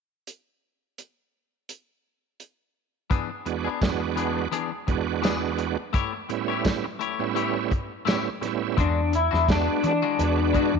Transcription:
0.27 closed hi-hat soft
0.98 closed hi-hat soft
1.69 closed hi-hat soft
2.40 closed hi-hat soft
3.10 3.30 E3 medium
3.10 3.30 B3 medium
3.10 3.29 D4 medium
3.10 3.28 G#4 medium
3.10 kick medium
3.10 closed hi-hat medium
3.30 muted clean electric guitar stroke soft
3.46 3.69 E2 medium
3.46 3.69 G#3 medium
3.46 3.69 B3 medium
3.46 3.70 D4 medium
3.46 3.70 F#4 medium
3.46 muted clean electric guitar stroke soft
3.46 closed hi-hat soft
3.64 3.80 B3 soft
3.64 3.81 D4 soft
3.64 3.81 G#4 soft
3.81 4.48 E2 medium
3.81 4.48 G#3 medium
3.81 4.48 B3 medium
3.81 4.48 D4 medium
3.81 4.48 F#4 medium
3.81 muted clean electric guitar stroke soft
3.81 kick medium
3.81 snare medium
3.81 closed hi-hat medium
3.81 tambourine medium
4.00 muted clean electric guitar stroke soft
4.16 4.39 E3 soft
4.16 4.40 B3 medium
4.16 4.40 D4 medium
4.16 4.40 G#4 medium
4.16 closed hi-hat medium
4.51 4.71 E3 medium
4.51 4.71 B3 medium
4.51 4.71 D4 medium
4.51 4.70 G#4 medium
4.51 closed hi-hat medium
4.71 muted clean electric guitar stroke soft
4.87 5.77 E2 medium
4.87 5.77 G#3 medium
4.87 5.77 B3 medium
4.87 5.77 D4 medium
4.87 5.78 F#4 medium
4.87 muted clean electric guitar stroke soft
4.87 kick medium
4.87 closed hi-hat medium
5.22 5.42 E3 medium
5.22 5.42 B3 medium
5.22 5.41 D4 medium
5.22 5.40 G#4 medium
5.22 snare medium
5.22 closed hi-hat medium
5.22 tambourine medium
5.41 muted clean electric guitar stroke soft
5.58 muted clean electric guitar stroke soft
5.58 closed hi-hat medium
5.93 6.13 A3 medium
5.93 6.13 E4 medium
5.93 6.12 G4 medium
5.93 6.12 C#5 medium
5.93 kick medium
5.93 closed hi-hat medium
6.13 muted clean electric guitar stroke soft
6.29 6.86 A2 medium
6.29 6.86 G3 medium
6.29 6.86 B3 medium
6.29 6.86 C#4 medium
6.29 6.86 E4 medium
6.29 muted clean electric guitar stroke soft
6.29 closed hi-hat soft
6.48 6.64 E4 soft
6.48 6.64 G4 soft
6.48 6.65 C#5 soft
6.65 muted clean electric guitar stroke soft
6.65 kick medium
6.65 snare medium
6.65 closed hi-hat medium
6.65 tambourine medium
6.84 muted clean electric guitar stroke soft
6.99 7.23 A3 medium
6.99 7.23 E4 medium
6.99 7.24 G4 medium
6.99 7.24 C#5 medium
6.99 closed hi-hat soft
7.19 7.73 A2 medium
7.19 7.73 G3 medium
7.19 7.73 B3 medium
7.19 7.73 C#4 medium
7.19 7.73 E4 medium
7.35 7.55 A3 medium
7.35 7.55 E4 medium
7.35 7.54 G4 medium
7.35 7.53 C#5 medium
7.35 closed hi-hat medium
7.55 muted clean electric guitar stroke soft
7.71 muted clean electric guitar stroke soft
7.71 kick medium
7.71 closed hi-hat soft
8.05 8.29 A2 medium
8.05 8.30 G3 medium
8.05 8.25 A3 medium
8.05 8.30 B3 medium
8.05 8.30 C#4 medium
8.05 8.25 E4 medium
8.05 8.30 E4 medium
8.05 8.25 G4 medium
8.05 8.24 C#5 medium
8.05 snare medium
8.05 closed hi-hat medium
8.05 tambourine medium
8.25 muted clean electric guitar stroke soft
8.41 8.77 A2 medium
8.41 8.77 G3 medium
8.41 8.77 B3 medium
8.41 8.78 C#4 medium
8.41 8.78 E4 medium
8.41 muted clean electric guitar stroke soft
8.41 snare soft
8.41 closed hi-hat medium
8.77 9.30 E2 loud
8.77 9.00 E3 medium
8.77 9.00 G#3 medium
8.77 9.00 D4 medium
8.77 9.13 D4 medium
8.77 9.01 F#4 medium
8.77 kick loud
8.77 closed hi-hat medium
9.12 9.49 E4 medium
9.12 muted clean electric guitar stroke soft
9.12 closed hi-hat medium
9.31 9.66 E2 medium
9.31 9.47 G#3 soft
9.31 9.47 D4 soft
9.31 9.48 F#4 medium
9.31 snare soft
9.47 9.93 G#3 medium
9.47 9.93 B3 medium
9.47 9.93 D4 medium
9.47 9.84 D4 medium
9.47 9.93 F#4 medium
9.47 muted clean electric guitar stroke soft
9.47 kick medium
9.47 snare loud
9.47 closed hi-hat medium
9.47 tambourine medium
9.67 muted clean electric guitar stroke soft
9.83 10.02 E3 medium
9.83 10.79 D4 medium
9.83 muted clean electric guitar stroke soft
9.83 closed hi-hat medium
10.02 10.24 E3 medium
10.02 10.23 G#3 medium
10.02 10.23 D4 medium
10.02 10.23 F#4 medium
10.18 10.53 E2 medium
10.18 10.75 G#3 medium
10.18 10.75 B3 medium
10.18 10.75 D4 medium
10.18 10.76 F#4 medium
10.18 closed hi-hat medium
10.38 muted clean electric guitar stroke soft
10.53 10.73 E3 medium
10.53 10.73 G#3 medium
10.53 10.73 D4 medium
10.53 10.72 F#4 medium
10.53 kick medium
10.53 closed hi-hat medium
10.73 10.79 E2 medium
10.73 muted clean electric guitar stroke soft

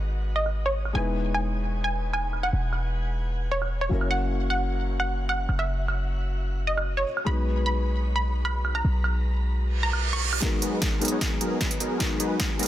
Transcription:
0.00 0.93 G#1 medium
0.00 0.92 G#3 medium
0.00 0.92 B3 medium
0.00 0.93 D#4 medium
0.00 0.93 F#4 medium
0.00 0.94 A#4 medium
0.36 0.59 D#5 medium
0.46 high woodblock medium
0.66 0.89 C#5 medium
0.85 high woodblock medium
0.93 2.51 E1 medium
0.93 3.88 G#3 medium
0.93 3.88 B3 medium
0.93 3.89 D#4 medium
0.93 3.89 E4 medium
0.93 3.90 B4 medium
0.93 1.26 G#5 medium
1.34 1.57 G#5 medium
1.84 2.07 G#5 medium
2.13 2.36 G#5 medium
2.13 high woodblock medium
2.33 high woodblock medium
2.43 2.66 F#5 medium
2.43 high woodblock medium
2.53 3.89 E1 medium
2.73 high woodblock medium
3.52 3.75 C#5 medium
3.62 high woodblock medium
3.81 4.04 C#5 medium
3.89 5.47 F#1 medium
3.89 7.04 F#3 medium
3.89 7.04 A#3 medium
3.89 7.05 C#4 medium
3.89 7.05 E4 medium
3.93 7.06 A#4 medium
4.01 high woodblock medium
4.11 4.42 F#5 loud
4.50 4.73 F#5 medium
5.00 5.23 F#5 medium
5.29 5.52 F#5 medium
5.29 high woodblock medium
5.49 7.05 F#1 medium
5.49 high woodblock medium
5.59 5.82 E5 medium
5.59 high woodblock medium
5.88 high woodblock medium
6.67 6.90 D#5 medium
6.77 high woodblock medium
6.97 7.20 C#5 medium
7.17 high woodblock medium
7.25 8.83 B1 medium
7.25 10.39 G#3 medium
7.25 10.40 B3 medium
7.25 10.40 D#4 medium
7.25 10.41 F#4 medium
7.25 7.57 B5 medium
7.29 10.41 B4 medium
7.66 7.89 B5 medium
8.16 8.38 B5 medium
8.45 8.68 B5 medium
8.45 high woodblock medium
8.65 high woodblock medium
8.75 8.98 A#5 medium
8.75 high woodblock medium
8.84 10.40 B1 medium
9.04 high woodblock medium
9.63 reverse cymbal medium
9.83 10.06 A#5 medium
9.93 high woodblock medium
10.13 10.36 C#6 medium
10.33 high woodblock medium
10.40 10.60 F#3 medium
10.40 10.98 G#3 medium
10.40 10.99 B3 medium
10.40 10.60 B3 medium
10.40 10.99 D#4 medium
10.40 10.60 D#4 medium
10.40 11.00 F#4 medium
10.40 10.60 G#4 medium
10.40 10.60 A#4 loud
10.40 kick medium
10.40 snare soft
10.40 closed hi-hat medium
10.44 11.00 A#4 loud
10.62 10.79 F#3 medium
10.62 10.79 B3 medium
10.62 10.79 D#4 medium
10.62 10.79 G#4 medium
10.62 10.79 B4 medium
10.62 closed hi-hat medium
10.82 10.95 F#3 medium
10.82 10.95 B3 medium
10.82 10.95 D#4 medium
10.82 10.95 G#4 medium
10.82 kick medium
10.82 snare soft
10.82 closed hi-hat medium
10.99 11.10 F#3 medium
10.99 11.97 G#3 medium
10.99 11.97 B3 medium
10.99 11.10 B3 medium
10.99 11.98 D#4 medium
10.99 11.10 D#4 medium
10.99 11.98 F#4 medium
10.99 11.10 G#4 medium
10.99 11.10 A#4 loud
10.99 closed hi-hat soft
11.03 11.99 G#4 medium
11.03 closed hi-hat medium
11.08 11.19 F#3 medium
11.08 11.19 B3 medium
11.08 11.19 D#4 medium
11.08 11.19 G#4 medium
11.08 11.19 C#5 medium
11.08 closed hi-hat medium
11.21 kick medium
11.21 snare soft
11.21 closed hi-hat medium
11.41 11.58 F#3 medium
11.41 11.58 B3 medium
11.41 11.58 D#4 medium
11.41 11.58 G#4 medium
11.41 11.58 A#4 medium
11.41 closed hi-hat medium
11.61 11.78 F#3 medium
11.61 11.78 B3 medium
11.61 11.78 D#4 medium
11.61 11.78 G#4 medium
11.61 kick medium
11.61 snare soft
11.61 closed hi-hat medium
11.71 closed hi-hat medium
11.80 11.98 F#3 medium
11.80 11.98 B3 medium
11.80 11.98 D#4 medium
11.80 11.98 G#4 medium
11.80 11.98 A#4 medium
11.80 closed hi-hat medium
11.98 12.18 F#3 medium
11.98 12.56 G#3 medium
11.98 12.57 B3 medium
11.98 12.18 B3 medium
11.98 12.57 D#4 medium
11.98 12.18 D#4 medium
11.98 12.58 F#4 medium
11.98 12.18 G#4 medium
11.98 12.18 A#4 loud
11.98 kick medium
11.98 snare soft
11.98 closed hi-hat medium
12.02 12.58 A#4 loud
12.20 12.37 F#3 medium
12.20 12.37 B3 medium
12.20 12.37 D#4 medium
12.20 12.37 G#4 medium
12.20 12.37 B4 medium
12.20 closed hi-hat medium
12.40 12.53 F#3 medium
12.40 12.53 B3 medium
12.40 12.53 D#4 medium
12.40 12.53 G#4 medium
12.40 kick medium
12.40 snare soft
12.40 closed hi-hat medium
12.57 12.68 F#3 medium
12.57 12.68 G#3 medium
12.57 12.68 B3 medium
12.57 12.68 D#4 medium
12.57 12.68 F#4 medium
12.57 12.68 G#4 medium
12.57 12.68 A#4 loud
12.57 closed hi-hat soft
12.63 closed hi-hat medium

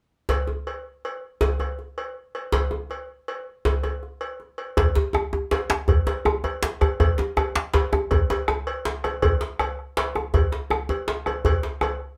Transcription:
0.29 cowbell soft
0.29 djembe slap medium
0.29 djembe bass medium
0.47 djembe tone medium
0.67 cowbell soft
0.67 djembe slap soft
1.05 cowbell soft
1.41 cowbell soft
1.41 djembe slap medium
1.41 djembe bass medium
1.60 cowbell soft
1.60 djembe tone medium
1.79 djembe slap soft
1.98 cowbell soft
2.35 cowbell soft
2.52 cowbell soft
2.52 djembe slap medium
2.52 djembe bass medium
2.71 djembe tone medium
2.90 cowbell soft
2.90 djembe slap soft
3.28 cowbell soft
3.65 cowbell soft
3.65 djembe slap medium
3.65 djembe bass medium
3.83 cowbell soft
3.83 djembe tone medium
4.03 djembe slap soft
4.21 cowbell soft
4.40 djembe slap soft
4.58 cowbell soft
4.77 bombo low medium
4.77 cowbell medium
4.77 djembe slap medium
4.77 djembe bass medium
4.95 djembe slap medium
4.95 djembe bass medium
5.13 bombo rim medium
5.13 djembe tone medium
5.33 bombo rim soft
5.33 djembe tone medium
5.51 bombo rim soft
5.51 cowbell soft
5.51 djembe slap medium
5.51 djembe tone medium
5.70 bombo rim medium
5.70 djembe slap medium
5.70 djembe slap soft
5.70 djembe tone soft
5.88 bombo low medium
5.88 cowbell soft
5.88 djembe slap soft
5.88 djembe bass medium
6.07 cowbell soft
6.07 djembe slap medium
6.07 djembe tone medium
6.25 bombo rim medium
6.25 djembe slap soft
6.25 djembe tone medium
6.44 cowbell soft
6.44 djembe tone medium
6.63 djembe slap medium
6.81 bombo rim medium
6.81 cowbell soft
6.81 djembe tone medium
6.81 djembe bass medium
7.00 bombo low medium
7.00 cowbell medium
7.00 djembe tone medium
7.00 djembe bass medium
7.18 djembe slap medium
7.18 djembe tone medium
7.37 bombo rim medium
7.37 cowbell soft
7.37 djembe tone medium
7.56 bombo rim soft
7.56 djembe slap medium
7.74 bombo rim soft
7.74 cowbell soft
7.74 djembe slap medium
7.74 djembe bass medium
7.92 bombo rim medium
7.92 djembe slap soft
7.92 djembe tone medium
8.11 bombo low medium
8.11 cowbell soft
8.11 djembe slap soft
8.11 djembe tone medium
8.11 djembe bass medium
8.30 cowbell soft
8.30 djembe slap medium
8.30 djembe tone medium
8.48 bombo rim medium
8.48 djembe slap soft
8.48 djembe tone medium
8.67 cowbell soft
8.85 djembe slap medium
9.04 bombo rim medium
9.04 cowbell soft
9.04 djembe tone medium
9.22 bombo low medium
9.22 cowbell medium
9.22 djembe bass medium
9.41 djembe slap medium
9.59 bombo rim medium
9.59 cowbell soft
9.59 djembe tone medium
9.79 bombo rim soft
9.97 bombo rim soft
9.97 cowbell soft
9.97 djembe slap medium
10.15 bombo rim medium
10.15 djembe slap soft
10.15 djembe tone medium
10.34 bombo low medium
10.34 cowbell soft
10.34 djembe slap soft
10.34 djembe tone medium
10.34 djembe bass medium
10.52 djembe slap medium
10.70 bombo rim medium
10.70 djembe slap soft
10.70 djembe tone medium
10.89 cowbell soft
10.89 djembe tone medium
11.08 djembe slap medium
11.26 bombo rim medium
11.26 cowbell soft
11.26 djembe tone medium
11.45 bombo rim soft
11.45 bombo low medium
11.45 cowbell medium
11.45 djembe tone medium
11.45 djembe bass medium
11.63 djembe slap medium
11.81 bombo rim medium
11.81 cowbell soft
11.81 djembe tone medium
12.00 bombo rim soft

